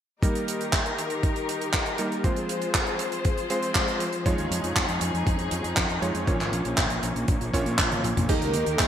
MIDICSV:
0, 0, Header, 1, 6, 480
1, 0, Start_track
1, 0, Tempo, 504202
1, 213, Time_signature, 4, 2, 24, 8
1, 8449, End_track
2, 0, Start_track
2, 0, Title_t, "Analog synth lead"
2, 0, Program_c, 0, 81
2, 7892, Note_on_c, 0, 70, 105
2, 8397, Note_off_c, 0, 70, 0
2, 8397, Note_on_c, 0, 68, 105
2, 8449, Note_off_c, 0, 68, 0
2, 8449, End_track
3, 0, Start_track
3, 0, Title_t, "String section"
3, 0, Program_c, 1, 48
3, 216, Note_on_c, 1, 67, 61
3, 216, Note_on_c, 1, 70, 76
3, 217, Note_on_c, 1, 51, 67
3, 217, Note_on_c, 1, 63, 63
3, 2116, Note_off_c, 1, 51, 0
3, 2116, Note_off_c, 1, 63, 0
3, 2116, Note_off_c, 1, 67, 0
3, 2116, Note_off_c, 1, 70, 0
3, 2135, Note_on_c, 1, 72, 77
3, 2136, Note_on_c, 1, 53, 68
3, 2136, Note_on_c, 1, 65, 62
3, 2136, Note_on_c, 1, 68, 64
3, 4035, Note_off_c, 1, 72, 0
3, 4036, Note_off_c, 1, 65, 0
3, 4036, Note_off_c, 1, 68, 0
3, 4053, Note_on_c, 1, 61, 66
3, 4053, Note_on_c, 1, 63, 67
3, 4054, Note_on_c, 1, 68, 78
3, 5954, Note_off_c, 1, 63, 0
3, 5955, Note_off_c, 1, 68, 0
3, 5975, Note_on_c, 1, 58, 66
3, 7855, Note_off_c, 1, 61, 0
3, 7856, Note_off_c, 1, 53, 0
3, 7875, Note_off_c, 1, 58, 0
3, 7894, Note_on_c, 1, 67, 67
3, 7894, Note_on_c, 1, 70, 85
3, 7895, Note_on_c, 1, 51, 74
3, 7896, Note_on_c, 1, 63, 64
3, 8449, Note_off_c, 1, 51, 0
3, 8449, Note_off_c, 1, 63, 0
3, 8449, Note_off_c, 1, 67, 0
3, 8449, Note_off_c, 1, 70, 0
3, 8449, End_track
4, 0, Start_track
4, 0, Title_t, "Electric grand piano"
4, 0, Program_c, 2, 2
4, 214, Note_on_c, 2, 55, 77
4, 214, Note_on_c, 2, 58, 72
4, 215, Note_on_c, 2, 63, 74
4, 215, Note_on_c, 2, 70, 84
4, 1865, Note_off_c, 2, 55, 0
4, 1865, Note_off_c, 2, 58, 0
4, 1865, Note_off_c, 2, 63, 0
4, 1865, Note_off_c, 2, 70, 0
4, 1894, Note_on_c, 2, 55, 86
4, 1894, Note_on_c, 2, 58, 82
4, 1894, Note_on_c, 2, 63, 79
4, 1894, Note_on_c, 2, 70, 97
4, 2105, Note_off_c, 2, 55, 0
4, 2105, Note_off_c, 2, 58, 0
4, 2105, Note_off_c, 2, 63, 0
4, 2105, Note_off_c, 2, 70, 0
4, 2135, Note_on_c, 2, 56, 72
4, 2135, Note_on_c, 2, 60, 64
4, 2135, Note_on_c, 2, 72, 78
4, 2136, Note_on_c, 2, 65, 64
4, 3306, Note_off_c, 2, 56, 0
4, 3306, Note_off_c, 2, 60, 0
4, 3306, Note_off_c, 2, 65, 0
4, 3306, Note_off_c, 2, 72, 0
4, 3334, Note_on_c, 2, 56, 88
4, 3334, Note_on_c, 2, 65, 81
4, 3334, Note_on_c, 2, 72, 102
4, 3335, Note_on_c, 2, 60, 85
4, 3545, Note_off_c, 2, 56, 0
4, 3545, Note_off_c, 2, 60, 0
4, 3545, Note_off_c, 2, 65, 0
4, 3545, Note_off_c, 2, 72, 0
4, 3574, Note_on_c, 2, 60, 80
4, 3575, Note_on_c, 2, 56, 89
4, 3575, Note_on_c, 2, 65, 81
4, 3575, Note_on_c, 2, 72, 97
4, 3844, Note_off_c, 2, 56, 0
4, 3844, Note_off_c, 2, 60, 0
4, 3844, Note_off_c, 2, 65, 0
4, 3844, Note_off_c, 2, 72, 0
4, 4053, Note_on_c, 2, 65, 77
4, 4054, Note_on_c, 2, 56, 83
4, 4054, Note_on_c, 2, 63, 78
4, 4054, Note_on_c, 2, 73, 96
4, 5705, Note_off_c, 2, 56, 0
4, 5705, Note_off_c, 2, 63, 0
4, 5705, Note_off_c, 2, 65, 0
4, 5705, Note_off_c, 2, 73, 0
4, 5732, Note_on_c, 2, 56, 90
4, 5732, Note_on_c, 2, 63, 81
4, 5732, Note_on_c, 2, 65, 79
4, 5732, Note_on_c, 2, 73, 94
4, 5944, Note_off_c, 2, 56, 0
4, 5944, Note_off_c, 2, 63, 0
4, 5944, Note_off_c, 2, 65, 0
4, 5944, Note_off_c, 2, 73, 0
4, 5972, Note_on_c, 2, 58, 65
4, 5972, Note_on_c, 2, 65, 64
4, 5973, Note_on_c, 2, 46, 72
4, 5973, Note_on_c, 2, 61, 67
4, 5973, Note_on_c, 2, 73, 78
4, 7144, Note_off_c, 2, 46, 0
4, 7144, Note_off_c, 2, 58, 0
4, 7144, Note_off_c, 2, 61, 0
4, 7144, Note_off_c, 2, 65, 0
4, 7144, Note_off_c, 2, 73, 0
4, 7173, Note_on_c, 2, 46, 87
4, 7173, Note_on_c, 2, 58, 79
4, 7173, Note_on_c, 2, 65, 79
4, 7174, Note_on_c, 2, 61, 77
4, 7174, Note_on_c, 2, 73, 103
4, 7865, Note_off_c, 2, 46, 0
4, 7865, Note_off_c, 2, 58, 0
4, 7865, Note_off_c, 2, 61, 0
4, 7865, Note_off_c, 2, 65, 0
4, 7865, Note_off_c, 2, 73, 0
4, 7894, Note_on_c, 2, 51, 88
4, 7894, Note_on_c, 2, 58, 80
4, 7894, Note_on_c, 2, 63, 80
4, 7894, Note_on_c, 2, 67, 78
4, 7894, Note_on_c, 2, 75, 99
4, 8449, Note_off_c, 2, 51, 0
4, 8449, Note_off_c, 2, 58, 0
4, 8449, Note_off_c, 2, 63, 0
4, 8449, Note_off_c, 2, 67, 0
4, 8449, Note_off_c, 2, 75, 0
4, 8449, End_track
5, 0, Start_track
5, 0, Title_t, "Fingered electric bass"
5, 0, Program_c, 3, 33
5, 4054, Note_on_c, 3, 41, 89
5, 4160, Note_off_c, 3, 41, 0
5, 4173, Note_on_c, 3, 39, 66
5, 4279, Note_off_c, 3, 39, 0
5, 4294, Note_on_c, 3, 41, 89
5, 4400, Note_off_c, 3, 41, 0
5, 4413, Note_on_c, 3, 41, 72
5, 4519, Note_off_c, 3, 41, 0
5, 4534, Note_on_c, 3, 41, 91
5, 4640, Note_off_c, 3, 41, 0
5, 4652, Note_on_c, 3, 41, 67
5, 4759, Note_off_c, 3, 41, 0
5, 4773, Note_on_c, 3, 41, 89
5, 4879, Note_off_c, 3, 41, 0
5, 4893, Note_on_c, 3, 41, 75
5, 4999, Note_off_c, 3, 41, 0
5, 5014, Note_on_c, 3, 41, 88
5, 5120, Note_off_c, 3, 41, 0
5, 5132, Note_on_c, 3, 41, 68
5, 5239, Note_off_c, 3, 41, 0
5, 5254, Note_on_c, 3, 41, 86
5, 5360, Note_off_c, 3, 41, 0
5, 5374, Note_on_c, 3, 41, 70
5, 5480, Note_off_c, 3, 41, 0
5, 5494, Note_on_c, 3, 41, 93
5, 5600, Note_off_c, 3, 41, 0
5, 5612, Note_on_c, 3, 41, 69
5, 5719, Note_off_c, 3, 41, 0
5, 5733, Note_on_c, 3, 41, 85
5, 5839, Note_off_c, 3, 41, 0
5, 5852, Note_on_c, 3, 41, 70
5, 5959, Note_off_c, 3, 41, 0
5, 5974, Note_on_c, 3, 34, 93
5, 6080, Note_off_c, 3, 34, 0
5, 6092, Note_on_c, 3, 32, 69
5, 6199, Note_off_c, 3, 32, 0
5, 6211, Note_on_c, 3, 34, 91
5, 6318, Note_off_c, 3, 34, 0
5, 6333, Note_on_c, 3, 34, 77
5, 6439, Note_off_c, 3, 34, 0
5, 6454, Note_on_c, 3, 34, 92
5, 6560, Note_off_c, 3, 34, 0
5, 6573, Note_on_c, 3, 34, 67
5, 6679, Note_off_c, 3, 34, 0
5, 6693, Note_on_c, 3, 34, 88
5, 6799, Note_off_c, 3, 34, 0
5, 6812, Note_on_c, 3, 34, 75
5, 6919, Note_off_c, 3, 34, 0
5, 6934, Note_on_c, 3, 34, 91
5, 7040, Note_off_c, 3, 34, 0
5, 7052, Note_on_c, 3, 34, 69
5, 7159, Note_off_c, 3, 34, 0
5, 7174, Note_on_c, 3, 34, 84
5, 7280, Note_off_c, 3, 34, 0
5, 7294, Note_on_c, 3, 46, 73
5, 7400, Note_off_c, 3, 46, 0
5, 7414, Note_on_c, 3, 34, 97
5, 7520, Note_off_c, 3, 34, 0
5, 7533, Note_on_c, 3, 32, 69
5, 7639, Note_off_c, 3, 32, 0
5, 7654, Note_on_c, 3, 34, 84
5, 7760, Note_off_c, 3, 34, 0
5, 7773, Note_on_c, 3, 34, 74
5, 7879, Note_off_c, 3, 34, 0
5, 7894, Note_on_c, 3, 39, 86
5, 8000, Note_off_c, 3, 39, 0
5, 8013, Note_on_c, 3, 37, 69
5, 8120, Note_off_c, 3, 37, 0
5, 8132, Note_on_c, 3, 39, 90
5, 8239, Note_off_c, 3, 39, 0
5, 8253, Note_on_c, 3, 39, 79
5, 8359, Note_off_c, 3, 39, 0
5, 8374, Note_on_c, 3, 39, 91
5, 8449, Note_off_c, 3, 39, 0
5, 8449, End_track
6, 0, Start_track
6, 0, Title_t, "Drums"
6, 214, Note_on_c, 9, 36, 104
6, 221, Note_on_c, 9, 42, 67
6, 310, Note_off_c, 9, 36, 0
6, 316, Note_off_c, 9, 42, 0
6, 337, Note_on_c, 9, 42, 51
6, 432, Note_off_c, 9, 42, 0
6, 459, Note_on_c, 9, 42, 80
6, 554, Note_off_c, 9, 42, 0
6, 578, Note_on_c, 9, 42, 51
6, 673, Note_off_c, 9, 42, 0
6, 690, Note_on_c, 9, 42, 62
6, 694, Note_on_c, 9, 36, 110
6, 695, Note_on_c, 9, 39, 102
6, 786, Note_off_c, 9, 42, 0
6, 790, Note_off_c, 9, 36, 0
6, 790, Note_off_c, 9, 39, 0
6, 817, Note_on_c, 9, 42, 45
6, 912, Note_off_c, 9, 42, 0
6, 937, Note_on_c, 9, 42, 89
6, 1032, Note_off_c, 9, 42, 0
6, 1048, Note_on_c, 9, 42, 50
6, 1143, Note_off_c, 9, 42, 0
6, 1174, Note_on_c, 9, 36, 107
6, 1174, Note_on_c, 9, 42, 62
6, 1269, Note_off_c, 9, 42, 0
6, 1270, Note_off_c, 9, 36, 0
6, 1294, Note_on_c, 9, 42, 49
6, 1390, Note_off_c, 9, 42, 0
6, 1418, Note_on_c, 9, 42, 97
6, 1513, Note_off_c, 9, 42, 0
6, 1537, Note_on_c, 9, 42, 52
6, 1632, Note_off_c, 9, 42, 0
6, 1651, Note_on_c, 9, 39, 101
6, 1653, Note_on_c, 9, 42, 62
6, 1655, Note_on_c, 9, 36, 108
6, 1746, Note_off_c, 9, 39, 0
6, 1748, Note_off_c, 9, 42, 0
6, 1750, Note_off_c, 9, 36, 0
6, 1769, Note_on_c, 9, 42, 51
6, 1864, Note_off_c, 9, 42, 0
6, 1887, Note_on_c, 9, 42, 88
6, 1982, Note_off_c, 9, 42, 0
6, 2017, Note_on_c, 9, 42, 47
6, 2112, Note_off_c, 9, 42, 0
6, 2134, Note_on_c, 9, 36, 109
6, 2134, Note_on_c, 9, 42, 62
6, 2229, Note_off_c, 9, 42, 0
6, 2230, Note_off_c, 9, 36, 0
6, 2251, Note_on_c, 9, 42, 50
6, 2346, Note_off_c, 9, 42, 0
6, 2373, Note_on_c, 9, 42, 93
6, 2468, Note_off_c, 9, 42, 0
6, 2491, Note_on_c, 9, 42, 55
6, 2586, Note_off_c, 9, 42, 0
6, 2614, Note_on_c, 9, 36, 110
6, 2614, Note_on_c, 9, 39, 110
6, 2614, Note_on_c, 9, 42, 64
6, 2709, Note_off_c, 9, 36, 0
6, 2709, Note_off_c, 9, 39, 0
6, 2709, Note_off_c, 9, 42, 0
6, 2729, Note_on_c, 9, 42, 46
6, 2824, Note_off_c, 9, 42, 0
6, 2847, Note_on_c, 9, 42, 90
6, 2943, Note_off_c, 9, 42, 0
6, 2970, Note_on_c, 9, 42, 49
6, 3065, Note_off_c, 9, 42, 0
6, 3091, Note_on_c, 9, 42, 65
6, 3094, Note_on_c, 9, 36, 114
6, 3186, Note_off_c, 9, 42, 0
6, 3189, Note_off_c, 9, 36, 0
6, 3213, Note_on_c, 9, 42, 50
6, 3308, Note_off_c, 9, 42, 0
6, 3332, Note_on_c, 9, 42, 90
6, 3427, Note_off_c, 9, 42, 0
6, 3452, Note_on_c, 9, 42, 52
6, 3547, Note_off_c, 9, 42, 0
6, 3569, Note_on_c, 9, 42, 62
6, 3571, Note_on_c, 9, 39, 121
6, 3574, Note_on_c, 9, 36, 114
6, 3664, Note_off_c, 9, 42, 0
6, 3666, Note_off_c, 9, 39, 0
6, 3669, Note_off_c, 9, 36, 0
6, 3693, Note_on_c, 9, 42, 47
6, 3788, Note_off_c, 9, 42, 0
6, 3811, Note_on_c, 9, 42, 88
6, 3906, Note_off_c, 9, 42, 0
6, 3928, Note_on_c, 9, 42, 55
6, 4023, Note_off_c, 9, 42, 0
6, 4054, Note_on_c, 9, 36, 110
6, 4056, Note_on_c, 9, 42, 67
6, 4149, Note_off_c, 9, 36, 0
6, 4151, Note_off_c, 9, 42, 0
6, 4172, Note_on_c, 9, 42, 46
6, 4267, Note_off_c, 9, 42, 0
6, 4300, Note_on_c, 9, 42, 92
6, 4396, Note_off_c, 9, 42, 0
6, 4417, Note_on_c, 9, 42, 55
6, 4512, Note_off_c, 9, 42, 0
6, 4533, Note_on_c, 9, 42, 73
6, 4534, Note_on_c, 9, 36, 112
6, 4535, Note_on_c, 9, 39, 110
6, 4628, Note_off_c, 9, 42, 0
6, 4629, Note_off_c, 9, 36, 0
6, 4630, Note_off_c, 9, 39, 0
6, 4650, Note_on_c, 9, 42, 49
6, 4745, Note_off_c, 9, 42, 0
6, 4770, Note_on_c, 9, 42, 89
6, 4865, Note_off_c, 9, 42, 0
6, 4901, Note_on_c, 9, 42, 49
6, 4996, Note_off_c, 9, 42, 0
6, 5014, Note_on_c, 9, 36, 118
6, 5015, Note_on_c, 9, 42, 76
6, 5109, Note_off_c, 9, 36, 0
6, 5110, Note_off_c, 9, 42, 0
6, 5129, Note_on_c, 9, 42, 49
6, 5224, Note_off_c, 9, 42, 0
6, 5248, Note_on_c, 9, 42, 95
6, 5343, Note_off_c, 9, 42, 0
6, 5373, Note_on_c, 9, 42, 54
6, 5468, Note_off_c, 9, 42, 0
6, 5491, Note_on_c, 9, 39, 104
6, 5493, Note_on_c, 9, 36, 112
6, 5496, Note_on_c, 9, 42, 64
6, 5586, Note_off_c, 9, 39, 0
6, 5589, Note_off_c, 9, 36, 0
6, 5592, Note_off_c, 9, 42, 0
6, 5611, Note_on_c, 9, 42, 43
6, 5706, Note_off_c, 9, 42, 0
6, 5736, Note_on_c, 9, 42, 73
6, 5831, Note_off_c, 9, 42, 0
6, 5853, Note_on_c, 9, 42, 53
6, 5948, Note_off_c, 9, 42, 0
6, 5973, Note_on_c, 9, 36, 110
6, 5976, Note_on_c, 9, 42, 74
6, 6069, Note_off_c, 9, 36, 0
6, 6071, Note_off_c, 9, 42, 0
6, 6101, Note_on_c, 9, 42, 47
6, 6102, Note_on_c, 9, 39, 34
6, 6196, Note_off_c, 9, 42, 0
6, 6197, Note_off_c, 9, 39, 0
6, 6216, Note_on_c, 9, 42, 76
6, 6312, Note_off_c, 9, 42, 0
6, 6331, Note_on_c, 9, 42, 47
6, 6426, Note_off_c, 9, 42, 0
6, 6450, Note_on_c, 9, 42, 70
6, 6451, Note_on_c, 9, 39, 103
6, 6454, Note_on_c, 9, 36, 111
6, 6545, Note_off_c, 9, 42, 0
6, 6547, Note_off_c, 9, 39, 0
6, 6549, Note_off_c, 9, 36, 0
6, 6569, Note_on_c, 9, 42, 48
6, 6665, Note_off_c, 9, 42, 0
6, 6692, Note_on_c, 9, 42, 79
6, 6787, Note_off_c, 9, 42, 0
6, 6817, Note_on_c, 9, 42, 48
6, 6913, Note_off_c, 9, 42, 0
6, 6931, Note_on_c, 9, 42, 67
6, 6933, Note_on_c, 9, 36, 124
6, 7026, Note_off_c, 9, 42, 0
6, 7029, Note_off_c, 9, 36, 0
6, 7055, Note_on_c, 9, 42, 51
6, 7150, Note_off_c, 9, 42, 0
6, 7174, Note_on_c, 9, 36, 61
6, 7179, Note_on_c, 9, 42, 95
6, 7269, Note_off_c, 9, 36, 0
6, 7274, Note_off_c, 9, 42, 0
6, 7294, Note_on_c, 9, 42, 49
6, 7389, Note_off_c, 9, 42, 0
6, 7412, Note_on_c, 9, 39, 118
6, 7414, Note_on_c, 9, 36, 120
6, 7418, Note_on_c, 9, 42, 71
6, 7507, Note_off_c, 9, 39, 0
6, 7509, Note_off_c, 9, 36, 0
6, 7513, Note_off_c, 9, 42, 0
6, 7535, Note_on_c, 9, 48, 44
6, 7536, Note_on_c, 9, 42, 44
6, 7631, Note_off_c, 9, 42, 0
6, 7631, Note_off_c, 9, 48, 0
6, 7653, Note_on_c, 9, 47, 60
6, 7657, Note_on_c, 9, 42, 76
6, 7749, Note_off_c, 9, 47, 0
6, 7753, Note_off_c, 9, 42, 0
6, 7780, Note_on_c, 9, 45, 74
6, 7781, Note_on_c, 9, 42, 52
6, 7875, Note_off_c, 9, 45, 0
6, 7876, Note_off_c, 9, 42, 0
6, 7891, Note_on_c, 9, 42, 65
6, 7894, Note_on_c, 9, 36, 111
6, 7894, Note_on_c, 9, 49, 92
6, 7986, Note_off_c, 9, 42, 0
6, 7989, Note_off_c, 9, 36, 0
6, 7989, Note_off_c, 9, 49, 0
6, 8015, Note_on_c, 9, 42, 52
6, 8110, Note_off_c, 9, 42, 0
6, 8126, Note_on_c, 9, 42, 88
6, 8221, Note_off_c, 9, 42, 0
6, 8249, Note_on_c, 9, 42, 51
6, 8344, Note_off_c, 9, 42, 0
6, 8369, Note_on_c, 9, 39, 106
6, 8374, Note_on_c, 9, 36, 108
6, 8375, Note_on_c, 9, 42, 81
6, 8449, Note_off_c, 9, 36, 0
6, 8449, Note_off_c, 9, 39, 0
6, 8449, Note_off_c, 9, 42, 0
6, 8449, End_track
0, 0, End_of_file